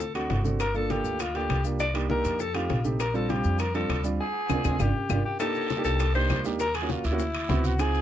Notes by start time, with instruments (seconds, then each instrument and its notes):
Already playing: upright bass D2, alto saxophone A4
0.00 high bongo, high conga, maracas
0.14 grand piano A3 C4 D4 F#4, alto saxophone F#4, high conga, high timbale, claves, maracas
0.30 upright bass G1, high bongo, low bongo, high conga, high timbale, low timbale, maracas
0.44 grand piano A3 C4 D4 F#4, high bongo, high conga, maracas
0.60 alto saxophone A#4, high bongo, high timbale, claves, maracas
0.74 grand piano A#3 D4 F4 A4, alto saxophone A4, high conga, maracas
0.89 grand piano A#3 D4 F4 A4, alto saxophone G4, high bongo, high conga, high timbale, maracas
1.04 upright bass D2, maracas
1.19 alto saxophone F4, high bongo, high conga, high timbale, claves, maracas
1.34 grand piano A#3 D4 F4 A4, alto saxophone G4, high conga, high timbale, maracas
1.49 upright bass C2, high bongo, low bongo, high conga, high timbale, claves, maracas
1.64 grand piano A#3 D4 F4 G4, maracas
1.79 alto saxophone D5, high bongo, high conga, high timbale, maracas
1.94 grand piano A#3 D4 D#4 G4, high bongo, high conga, high timbale, claves, maracas
2.09 grand piano A#3 D4 D#4 G4, alto saxophone A#4, high bongo, high conga, maracas
2.25 upright bass F2, high bongo, high timbale, maracas
2.39 alto saxophone A4, high bongo, high conga, maracas
2.54 grand piano A3 C4 D#4 G4, alto saxophone F4, high conga, high timbale, claves, maracas
2.70 upright bass A#1, high bongo, low bongo, high conga, high timbale, maracas
2.84 grand piano A3 C4 D#4 G4, high bongo, high conga, maracas
3.00 alto saxophone A#4, high bongo, high timbale, claves, maracas
3.14 grand piano G3 C4 D4 F4, alto saxophone A4, high conga, maracas
3.29 grand piano G3 C4 D4 F4, alto saxophone G4, high bongo, high conga, high timbale, maracas
3.44 upright bass F2, maracas
3.59 alto saxophone A#4, high bongo, high conga, high timbale, claves, maracas
3.74 grand piano G3 C4 D4 F4, alto saxophone A4, high conga, high timbale, maracas
3.89 upright bass D2, high bongo, low bongo, high conga, high timbale, claves, maracas
4.04 grand piano G3 C4 D4 F4, maracas
4.20 alto saxophone G#4
4.49 upright bass D2, grand piano C4 D4 F4, low bongo, high conga, high timbale, claves, maracas
4.64 upright bass D2, grand piano C4 D4 F4, low bongo, high conga, high timbale, claves, maracas
4.79 upright bass G1, grand piano D4 F4 G4, alto saxophone G4, low bongo, high conga, high timbale, claves, maracas
5.09 upright bass G1, grand piano D4 F4 G4, low bongo, high conga, high timbale, claves, maracas
5.25 alto saxophone G4
5.39 grand piano A#3 D4 D#4 G4, alto saxophone A4, high bongo, high conga, high timbale, long guiro, claves, maracas
5.55 high conga, maracas
5.70 high bongo, high conga, high timbale, short guiro, maracas
5.76 grand piano A#3 D4 D#4 G4
5.84 upright bass C2, alto saxophone A4, short guiro, maracas
5.99 high bongo, high conga, high timbale, long guiro, claves, maracas
6.14 grand piano A#3 D4 D#4 G4, alto saxophone C5, high conga, high timbale, maracas
6.30 upright bass D#2, high bongo, low bongo, high conga, high timbale, low timbale, short guiro, claves, maracas
6.44 grand piano A#3 D4 D#4 G4, short guiro, maracas
6.59 alto saxophone A#4, high bongo, high conga, high timbale, long guiro, maracas
6.75 alto saxophone G#4, high bongo, high conga, high timbale, claves, maracas
6.82 grand piano A#3 C#4 F4 F#4
6.89 alto saxophone F4, high bongo, high conga, short guiro, maracas
7.04 upright bass D2, alto saxophone E4, high bongo, high timbale, short guiro, maracas
7.11 grand piano A#3 C#4 F4 F#4
7.19 high bongo, high conga, long guiro, maracas
7.34 high conga, high timbale, claves, maracas
7.49 upright bass C#2, grand piano B3 C4 E4 F#4, high bongo, low bongo, high conga, high timbale, short guiro, maracas
7.64 alto saxophone F#4, high bongo, high conga, short guiro, maracas
7.79 grand piano C4 D#4 F4 G#4, alto saxophone G#4, high bongo, high conga, high timbale, long guiro, claves, maracas
7.94 high conga, maracas